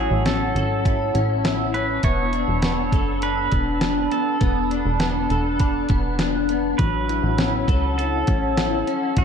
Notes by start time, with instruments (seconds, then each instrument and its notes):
Already playing: clean electric guitar F#3 C#4 E4 A4, pedal steel guitar G#4, ambient pad C#5 F#5 A5 E6, celesta E5
0.11 analog synth bass A1
0.26 clean electric guitar C#4, pedal steel guitar A4, snare, closed hi-hat
0.55 analog synth bass G#1, clean electric guitar A4, closed hi-hat
0.85 clean electric guitar E4, celesta A5, kick, closed hi-hat
1.14 analog synth bass A1, clean electric guitar C#4, closed hi-hat
1.44 clean electric guitar E4, snare, closed hi-hat
1.74 clean electric guitar C#4, pedal steel guitar B4, closed hi-hat
2.03 analog synth bass E1, clean electric guitar B3, ambient pad D4 B5, pedal steel guitar C#5, celesta E5, kick, closed hi-hat
2.33 clean electric guitar D4, closed hi-hat
2.48 analog synth bass E1
2.62 clean electric guitar B3, snare, closed hi-hat
2.92 analog synth bass F#1, clean electric guitar A4, kick, closed hi-hat
3.22 clean electric guitar D4, pedal steel guitar B4, celesta A5, closed hi-hat
3.52 analog synth bass E1, clean electric guitar B3, kick, closed hi-hat
3.81 clean electric guitar D4, snare, closed hi-hat
4.11 clean electric guitar B3, pedal steel guitar A4, closed hi-hat
4.40 analog synth bass E1, clean electric guitar B3, ambient pad F#6, kick, closed hi-hat
4.71 clean electric guitar D4, closed hi-hat
4.85 analog synth bass E1
5.00 clean electric guitar B3, snare, closed hi-hat
5.30 analog synth bass E1, clean electric guitar A4, closed hi-hat
5.60 clean electric guitar D4, celesta B5, kick, closed hi-hat
5.89 analog synth bass E1, clean electric guitar B3, kick, closed hi-hat
6.19 clean electric guitar D4, snare, closed hi-hat
6.49 clean electric guitar B3, closed hi-hat
6.78 analog synth bass A1, clean electric guitar F#3, pedal steel guitar B4, ambient pad C#5 F#5 E6, kick, closed hi-hat
7.08 clean electric guitar E4, closed hi-hat
7.23 analog synth bass A1
7.38 clean electric guitar C#4, snare, closed hi-hat
7.68 analog synth bass C#2, clean electric guitar A4, kick, closed hi-hat
7.98 clean electric guitar E4, pedal steel guitar A4, closed hi-hat
8.27 analog synth bass A1, clean electric guitar C#4, kick, closed hi-hat
8.57 clean electric guitar E4, snare, closed hi-hat
8.87 clean electric guitar C#4, closed hi-hat
9.17 analog synth bass A1, clean electric guitar F#3, pedal steel guitar F#4, kick, closed hi-hat